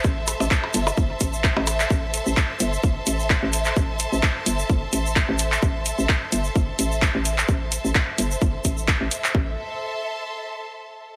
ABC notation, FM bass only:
X:1
M:4/4
L:1/16
Q:"Swing 16ths" 1/4=129
K:Am
V:1 name="FM bass" clef=bass
A,,,3 A,,, z2 G,,, z G,,, z A,,,3 A,,,3 | A,,,3 A,,, z2 G,,, z G,,, z A,,,3 A,,,3 | A,,,3 A,,, z2 G,,, z G,,, z A,,,3 A,,,3 | A,,,3 A,,, z2 G,,, z G,,, z A,,,3 A,,,3 |
A,,,3 A,,, z2 G,,, z G,,, z A,,,3 A,,, z2 | A,,,2 z12 z2 |]